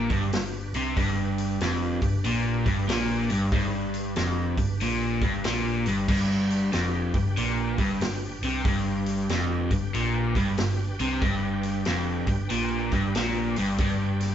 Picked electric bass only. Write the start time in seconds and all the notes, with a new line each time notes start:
0.11 G1
0.73 C2
0.97 G1
1.60 F1
2.02 G1
2.24 A#1
2.66 G1
2.88 A#1
3.30 G1
3.52 G1
4.17 F1
4.58 G1
4.81 A#1
5.22 G1
5.46 A#1
5.87 G1
6.08 G1
6.74 F1
7.14 G1
7.36 A#1
7.78 G1
8.01 G1
8.42 C2
8.65 G1
9.30 F1
9.71 G1
9.94 A#1
10.35 G1
10.59 G1
11.00 C2
11.22 G1
11.86 F1
12.27 G1
12.52 A#1
12.91 G1
13.16 A#1
13.58 G1
13.79 G1